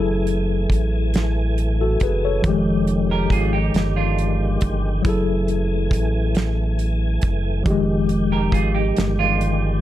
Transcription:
Already playing: F#1 E3 F#3 A3 E4 G#4 A4 G#5
0.27 closed hi-hat
0.70 A1, kick, closed hi-hat
1.14 snare, closed hi-hat
1.58 closed hi-hat
1.81 F#4 A4
2.00 F#1 G#4 B4, kick, closed hi-hat
2.25 A4 C#5
2.42 F1 D#3 F3 G#3 G4, kick, closed hi-hat
2.47 G#3 G4
2.87 closed hi-hat
3.11 G4 A#4
3.30 G#1 F4 G#4, kick, closed hi-hat
3.53 D#4 G4
3.74 G1, snare, closed hi-hat
3.96 D4 F4
4.18 closed hi-hat
4.61 G1, kick, closed hi-hat
5.02 F#1 E3 F#3 A3 E4 G#5, kick, closed hi-hat
5.07 G#4 A4
5.48 closed hi-hat
5.91 A1, kick, closed hi-hat
6.35 snare, closed hi-hat
6.79 closed hi-hat
7.21 F#1, kick, closed hi-hat
7.64 F1 D#3 F3 G#3 G4, kick, closed hi-hat
7.68 G#3 G4
8.09 closed hi-hat
8.32 G4 A#4
8.52 G#1 F4 G#4, kick, closed hi-hat
8.75 D#4 G4
8.96 G1, snare, closed hi-hat
9.19 D4 F4
9.41 closed hi-hat

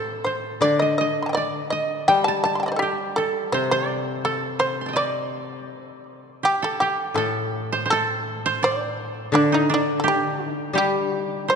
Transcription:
Already playing: A2 G4 A4 C5
0.24 C5
0.61 D3 D5
0.79 D#5
0.98 D#5
1.22 A5 C6
1.29 D#5 G5
1.35 D5
1.70 D#5
2.08 G3 G5
2.24 A5
2.44 A5
2.55 C6
2.60 G5 A5
2.66 D5 D#5
2.72 C5
2.76 G4 A4
2.82 G4
3.16 A4
3.52 C3 C5
3.71 D5
4.25 A4
4.59 C5
4.81 C6
4.86 G5 A5
4.93 D5 D#5
6.43 G4
6.62 A4
6.80 G4
7.14 A2 A4
7.72 C5
7.86 C5
7.90 A4
8.46 C5
8.63 D5
9.32 D3 D4
9.52 D#4
9.70 D4
9.74 D4
10.00 A4
10.04 G4
10.08 G4
10.50 D#4
10.73 G3 G4
10.78 G4
11.21 D#4
11.48 C5

